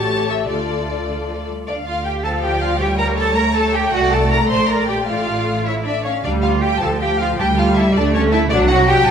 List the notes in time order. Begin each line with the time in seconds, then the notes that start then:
Already playing: A1 A2 A3 G4 A4 C#5 A5
0.29 E5
0.48 D2 D3 A3 F4 A4 D5
1.08 D3
1.28 F3
1.48 G3
1.67 D2 D4 D5 F5
1.86 F4 F5
2.05 G4 G5
2.24 F3 A4 F5 A5
2.43 G4 G5
2.53 D5
2.62 F4 F5
2.80 G3 G4 C#5 G5
2.99 A#4 A#5
3.17 A4 A5
3.36 A3 A#4 A#5
3.55 A4 A5
3.74 G4 G5
3.93 C2 F#4 D5 F#5
4.12 A4 A5
4.31 A#4 A#5
4.50 A#1 C5 D5 C6
4.69 A#4 A#5
4.88 G4 G5
5.07 A1 A3 F4 D5 F5
5.66 E4 C#5 E5
5.85 D4 D5 E5
6.04 C#4 C#5 F5
6.24 D2 G3 D4 D5 F5
6.42 F4 F5
6.62 G4 F5 G5
6.80 D2 F3 A4 F5 A5
7.01 G4 F5 G5
7.20 F4 F5
7.38 D2 G3 G4 G5 A5
7.58 F4 F5 A5
7.77 E4 E5 A5
7.95 D2 A3 D4 D5 A5
8.14 C#4 C#5 A5
8.33 E4 E5 A5
8.51 C2 F#3 D4 D5 F#5
8.69 F#4 F#5
8.88 G4 G5